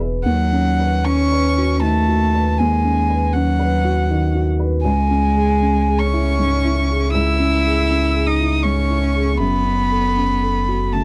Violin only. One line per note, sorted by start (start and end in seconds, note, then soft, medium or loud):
0.25 1.07 F#5 medium
1.05 1.81 C#6 medium
1.82 2.59 A5 medium
2.58 3.34 G#5 medium
3.33 4.46 F#5 medium
4.83 6.01 G#5 medium
5.99 7.12 C#6 medium
7.12 8.28 E6 medium
8.26 8.64 D#6 medium
8.63 9.40 C#6 medium
9.39 10.94 B5 medium
10.93 11.04 A5 medium